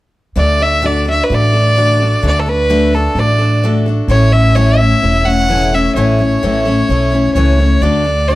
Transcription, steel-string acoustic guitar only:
0.36 D3 A3 D4 F#4 A4
0.58 D4 F#4 A4
0.82 D3 A3 D4 F#4 A4
1.05 D4 F#4 A4
1.30 A3 D4 F#4 A4
1.53 D4 F#4 A4
1.76 D3 A3 D4 F#4 A4
2.00 D4 F#4 A4
2.23 D3 A3 D4 F#4 A4
2.46 D4 F#4 A4
2.70 D3 A3 D4 F#4 A4
2.93 D4 F#4 A4
3.16 A3 D4 F#4 A4
3.39 D4 F#4 A4
3.63 D3 A3 D4 F#4 A4
3.86 D4 F#4 A4
4.08 A2 E3 A3 C#4 E4 A4
4.31 A3 C#4 E4 A4
4.55 A2 E3 A3 C#4 E4 A4
4.79 A3 C#4 E4 A4
5.02 A3 C#4 E4 A4
5.24 A3 C#4 E4 A4
5.48 A2 E3 A3 C#4 E4 A4
5.72 A3 C#4 E4 A4
5.96 A2 E3 A3 C#4 E4 A4
6.19 A3 C#4 E4 A4
6.43 A2 E3 A3 C#4 E4 A4
6.65 A3 C#4 E4 A4
6.89 A3 C#4 E4 A4
7.12 A3 C#4 E4 A4
7.36 A2 E3 A3 C#4 E4 A4
7.58 A3 C#4 E4 A4
7.82 D3 A3 D4 F#4 A4
8.04 D4 F#4 A4
8.29 A3 D4 F#4 A4

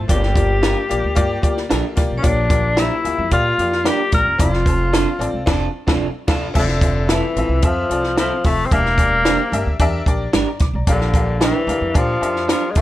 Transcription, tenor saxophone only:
0.11 G4
2.18 C#4
2.24 D4
2.79 E4
3.33 F4
3.88 G4
4.14 A#4
4.41 F4
6.58 D3
7.12 E3
7.65 F3
8.19 F3
8.46 A3
8.66 C4
8.72 A#3
10.89 D3
11.43 E3
11.97 F3
12.50 F3
12.71 G#3
12.78 A3

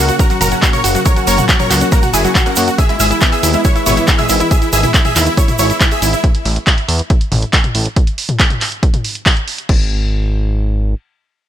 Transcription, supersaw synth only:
0.09 F#4
0.19 F#4 A#4
0.30 F#4
0.41 F#4 A#4
0.52 F#4
0.62 F#4
0.73 A#4 C#5
0.84 F#4
0.95 F#4
1.05 A#4 C#5
1.16 F#4
1.27 A#4 C#5
1.38 F#4
1.49 F#4
1.59 A#4 C#5
1.70 F#4
1.81 F#4
1.92 F#4 A#4
2.03 F#4
2.13 E4 G#4
2.24 F#4
2.35 F#4
2.46 A#3 F#4
2.57 F#4
2.67 F#4
2.78 G#4 E5
2.89 E4
3.00 G#4 E5
3.11 E4
3.21 E4
3.32 G#4 E5
3.43 E4
3.54 E4
3.65 E4 C#5
3.76 E4
3.86 E4 C#5
3.97 E4
4.08 E4
4.19 G#4 E5
4.29 E4
4.40 E4
4.51 G#4 E5
4.62 E4
4.73 G#4 E5
4.84 E4
4.94 E4
5.05 G#4 E5
5.16 E4
5.27 E4
5.38 E4 C#5
5.48 E4
5.59 E4 C#5
5.70 E4
5.81 E4
5.92 G#4 E5
6.02 E4
6.13 E4

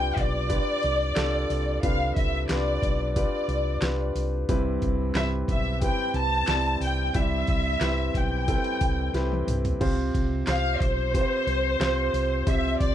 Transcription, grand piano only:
Already playing: C3 D4 F4 G4 B4
0.49 D4 F4 G4 B4
1.15 D4 F4 G4 A4
1.83 C3 D4 F4 G4 B4
2.49 D4 F4 G4 B4
3.16 D4 F4 G4 B4
3.82 D4 F4 G4 B4
4.49 G2 C4 E4 G4 B4
5.16 C4 E4 G4 B4
5.82 C4 E4 G4 B4
6.48 C4 E4 G4 D5
7.15 G2 C4 E4 G4 D5
7.81 C4 E4 G4 B4
8.48 C4 E4 G4 A4
8.54 B4
9.14 C4 E4 G4 B4
9.80 C3 C4 F4 G4 C5
10.47 C4 F4 G4 C5
11.14 C4 F4 G4 B4
11.21 C5
11.80 C4 F4 G4 C5
12.46 C3 C4 F4 G4 C5

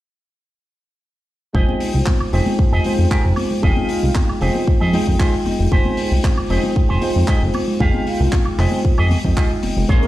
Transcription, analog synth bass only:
1.55 F1
1.94 C2
2.33 F1
2.59 F1
2.72 F1
2.99 F2
3.25 F1
3.63 F1
4.03 C2
4.42 F1
4.81 F2
5.07 F2
5.46 F1
5.59 F1
5.72 F1
6.11 C2
6.50 F1
6.76 F1
6.90 F1
7.16 F2
7.42 F1
7.80 F1
8.20 C2
8.59 F1
8.99 F2
9.25 F2
9.63 F1
9.77 F1
9.89 A#1

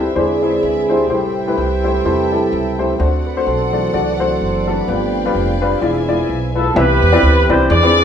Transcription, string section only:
Already playing: G4 B4 E5
0.16 G#4 D5 E5
1.10 A4 E5 G5
2.99 A4 D5 F#5
4.89 B4 F5 G5
5.82 E5 G#5

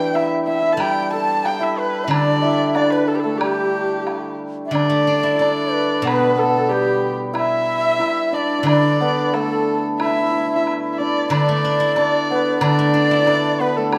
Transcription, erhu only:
Already playing: G5
0.15 E5
0.47 E5
0.72 A5
0.81 G5
1.13 A5
1.45 G5
1.63 E5
1.79 B4
2.14 D5
2.76 D5
2.90 B4
3.08 A4
3.15 G4
3.20 A4
3.37 G4
4.70 D5
5.39 D5
6.07 B4
6.39 A4
6.69 G4
7.36 E5
8.33 D5
8.66 D5
9.33 A4
9.99 E5
10.56 E5
10.93 E5
10.98 D5
11.31 D5
11.97 D5
12.61 D5
13.61 B4
13.76 A4
13.94 G4

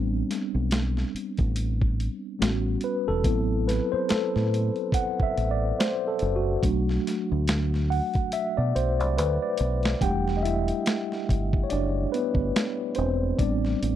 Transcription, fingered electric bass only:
Already playing: A1
0.55 B1
1.14 muted fingered electric bass stroke
1.39 A1
2.42 A1
3.08 E1
3.25 A1
3.93 muted fingered electric bass stroke
4.11 muted fingered electric bass stroke
4.36 A2
5.21 muted fingered electric bass stroke
5.37 A1
6.22 F#1
6.63 B1
7.32 D2
8.58 B2
8.76 B1
9.00 C2
9.19 D2
9.60 B1
10.02 E1
11.30 G1
11.72 F#1
12.35 G1
12.98 E1
13.40 A1
13.82 A1

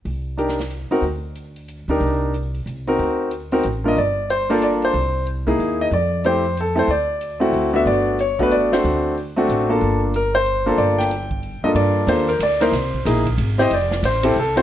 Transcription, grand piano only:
0.37 D4 D#4 G4 A#4
0.91 C4 D#4 F#4 A#4
1.89 D4 D#4 G4 A#4
2.87 C4 D#4 F#4 A#4
3.52 C4 D#4 F#4 A#4
3.84 G2 A#3 D4 F4 A#4 D#5
3.98 D5
4.30 C5
4.50 A#3 D4 F4 A4 A#4
4.63 D5
4.85 C5
5.47 A#3 D#4 E4 G#4
5.81 D#5
5.94 D5
6.25 A3 C4 E4 G4 C5
6.61 A4
6.75 A3 C4 E4 A4 C5
6.91 D5
7.40 A3 C4 E4 F#4
7.73 A3 B3 D4 F#4 E5
7.87 D5
8.21 C#5
8.39 A3 B3 D4 F#4 B4
8.52 D5
8.72 A3 C4 D4 F#4 C5
9.36 A3 C4 D4 F#4
9.69 A#3 D4 F4 A4
10.16 A#4
10.35 C5
10.66 A#3 D4 F4 A4
10.78 D5
10.98 G5
11.64 G2 A#3 D4 F4 A4 D#5
11.76 D5
12.08 A#3 D4 F4 A4 C5
12.29 A#4
12.43 D5
12.61 A#3 D#4 E4 A#4 C5
13.05 A#3 D#4 E4 G#4
13.58 C4 E4 G4 C5 D#5
13.74 D5
14.05 C5
14.23 C4 E4 G4 A4
14.39 A4
14.56 C4 E4 F#4 A4 C5

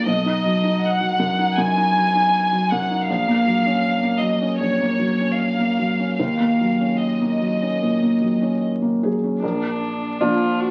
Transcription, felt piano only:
Already playing: F2 A#3 F4
0.06 B1
0.26 D#4
0.45 F#3
0.64 D#4
1.01 F#3
1.20 F#2
1.38 D#4
1.58 F#2
1.77 D#4
1.97 F#3
2.15 D#4
2.53 F#3
2.72 F#2
2.90 D#4
3.10 A#1
3.28 A#3
3.46 F#3
3.66 C#4
4.02 A#3
4.21 F#3
4.41 C#4
4.60 A#1
4.80 A#3
4.99 F#3
5.20 C#4
5.59 A#3
5.79 F#3
5.99 C#4
6.19 D#2
6.40 A#3
6.61 F#3
6.80 C#4
7.21 A#3
7.41 F#3
7.62 C#4
7.83 A#2
8.02 A#3
8.22 F#3
8.42 C#4
8.82 A#3
9.03 F#3 G#4
9.23 C#4
9.42 A#1 A#4
10.21 F3 A#3 D4 D5

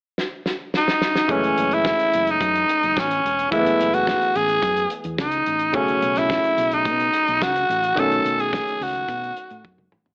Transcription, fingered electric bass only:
1.29 F#1
1.58 F#1
2.15 F#1
2.41 F#2
2.84 F#1
2.97 A1
3.25 E1
3.52 F#1
3.80 F#1
4.36 A1
4.63 F#2
5.05 E2
5.18 C#2
5.47 A1
5.74 B1
6.02 B1
6.58 B1
6.86 B2
7.29 B1
7.42 C#2
7.70 A1
7.98 B1
8.25 B1
8.81 C#2
9.09 B2
9.51 A2
9.65 F#2
9.93 A1

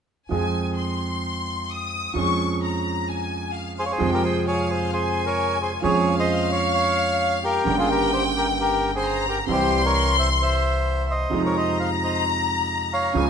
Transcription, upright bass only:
0.31 F2
2.15 F2
4.01 F2
5.84 F2
7.66 G1
9.49 C2
11.33 F2
13.15 C#2

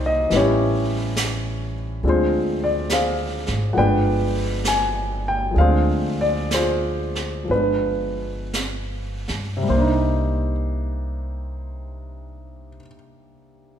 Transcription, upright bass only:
Already playing: C2
0.31 A1
2.03 D2
3.48 G#1
3.77 G1
5.56 D2
7.50 G1
9.29 G2
9.69 C2

